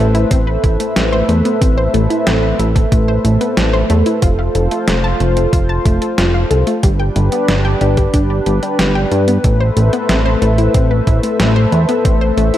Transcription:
Already playing: analog synth pad A3 A4 B4 C5 E5
0.00 analog synth bass A1
0.15 synth arpeggio sound E4, closed hi-hat
0.31 analog synth bass A1, synth arpeggio sound C4, kick, closed hi-hat
0.47 synth arpeggio sound B4
0.64 analog synth bass A1, synth arpeggio sound E4, kick, closed hi-hat
0.80 synth arpeggio sound A3, closed hi-hat
0.96 analog synth bass A1, synth arpeggio sound A3, snare, closed hi-hat
1.12 synth arpeggio sound C5
1.29 analog synth bass E2, synth arpeggio sound A3, closed hi-hat
1.45 synth arpeggio sound B3, closed hi-hat
1.61 analog synth bass A1, synth arpeggio sound C4, kick, closed hi-hat
1.78 synth arpeggio sound C5
1.94 analog synth bass A1, synth arpeggio sound A3, closed hi-hat
2.10 synth arpeggio sound E4, closed hi-hat
2.27 analog synth bass A1, synth arpeggio sound C4, snare, closed hi-hat
2.43 synth arpeggio sound B4
2.59 analog synth bass A1, synth arpeggio sound E4, closed hi-hat
2.76 synth arpeggio sound A3, kick, closed hi-hat
2.92 analog synth bass A1, synth arpeggio sound A3, kick, closed hi-hat
3.08 synth arpeggio sound C5
3.25 analog synth bass A1, synth arpeggio sound A3, closed hi-hat
3.41 synth arpeggio sound B3, closed hi-hat
3.57 analog synth bass A1, synth arpeggio sound C4, snare, closed hi-hat
3.73 synth arpeggio sound C5
3.90 analog synth bass E2, synth arpeggio sound A3, closed hi-hat
4.06 synth arpeggio sound E4, closed hi-hat
4.22 analog synth bass F1, synth arpeggio sound F4, analog synth pad F4 C5, kick, closed hi-hat
4.39 synth arpeggio sound F5
4.55 analog synth bass F1, synth arpeggio sound A4, closed hi-hat
4.71 synth arpeggio sound A3, closed hi-hat
4.88 analog synth bass F1, synth arpeggio sound A3, snare, closed hi-hat
5.04 synth arpeggio sound A5
5.20 analog synth bass F1, synth arpeggio sound A3, closed hi-hat
5.37 synth arpeggio sound C4, closed hi-hat
5.53 analog synth bass F1, synth arpeggio sound F4, kick, closed hi-hat
5.69 synth arpeggio sound A5
5.85 analog synth bass F1, synth arpeggio sound A3, kick, closed hi-hat
6.02 synth arpeggio sound A4, closed hi-hat
6.18 analog synth bass F1, synth arpeggio sound F4, snare, closed hi-hat
6.34 synth arpeggio sound F5
6.51 analog synth bass C2, synth arpeggio sound A4, closed hi-hat
6.67 synth arpeggio sound A3, closed hi-hat
6.83 analog synth bass G1, synth arpeggio sound G3, analog synth pad D4 G4 B4, kick, closed hi-hat
7.00 synth arpeggio sound G5
7.16 analog synth bass G1, synth arpeggio sound G3, closed hi-hat
7.32 synth arpeggio sound B3, closed hi-hat
7.48 analog synth bass G1, synth arpeggio sound D4, snare, closed hi-hat
7.65 synth arpeggio sound G5
7.81 analog synth bass G1, synth arpeggio sound G3, closed hi-hat
7.97 synth arpeggio sound G4, kick, closed hi-hat
8.14 analog synth bass G1, synth arpeggio sound D4, kick, closed hi-hat
8.30 synth arpeggio sound D5
8.46 analog synth bass G1, synth arpeggio sound G4, closed hi-hat
8.63 synth arpeggio sound G3, closed hi-hat
8.79 analog synth bass G1, synth arpeggio sound G3, snare, closed hi-hat
8.95 synth arpeggio sound G5
9.11 analog synth bass G2, synth arpeggio sound G3, closed hi-hat
9.28 synth arpeggio sound B3, closed hi-hat
9.44 analog synth bass A1, analog synth pad A3 A4 C5 E5, synth arpeggio sound A3, kick, closed hi-hat
9.60 synth arpeggio sound C5
9.77 analog synth bass A1, synth arpeggio sound A3, closed hi-hat
9.93 synth arpeggio sound B3, closed hi-hat
10.09 analog synth bass A1, synth arpeggio sound C4, snare, closed hi-hat
10.26 synth arpeggio sound C5
10.42 analog synth bass A1, synth arpeggio sound A3, closed hi-hat
10.58 synth arpeggio sound E4, closed hi-hat
10.74 analog synth bass A1, synth arpeggio sound C4, kick, closed hi-hat
10.91 synth arpeggio sound B4
11.07 analog synth bass A1, synth arpeggio sound E4, kick, closed hi-hat
11.23 synth arpeggio sound A3, closed hi-hat
11.40 analog synth bass A1, synth arpeggio sound A3, snare, closed hi-hat
11.56 synth arpeggio sound C5
11.72 analog synth bass E2, synth arpeggio sound A3, closed hi-hat
11.89 synth arpeggio sound B3, closed hi-hat
12.05 analog synth bass A1, synth arpeggio sound C4, kick, closed hi-hat
12.21 synth arpeggio sound C5
12.37 analog synth bass A1, synth arpeggio sound A3, closed hi-hat
12.54 synth arpeggio sound E4, closed hi-hat

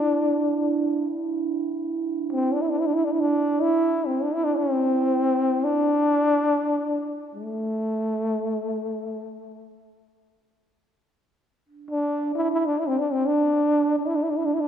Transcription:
Already playing: trombone D4, glass harmonica D4 E4
2.33 trombone C4
2.54 trombone D4
2.62 trombone E4
2.71 trombone D4
2.79 trombone E4
2.87 trombone D4
2.94 trombone E4
3.05 trombone D4
3.13 trombone E4
3.20 trombone D4
3.62 trombone E4
4.07 trombone C4
4.23 trombone D4
4.34 trombone E4
4.44 trombone D4
4.57 trombone C4
5.64 trombone D4
7.35 trombone A3
11.65 glass harmonica D4
11.91 trombone D4
12.35 trombone E4
12.52 trombone E4
12.66 trombone D4
12.80 trombone E4
12.88 trombone C4
12.99 trombone D4
13.12 trombone C4
13.27 trombone D4
13.99 trombone D4
14.06 trombone E4
14.16 trombone D4
14.23 trombone E4
14.30 trombone D4
14.37 trombone E4
14.46 trombone D4
14.54 trombone E4
14.61 trombone D4

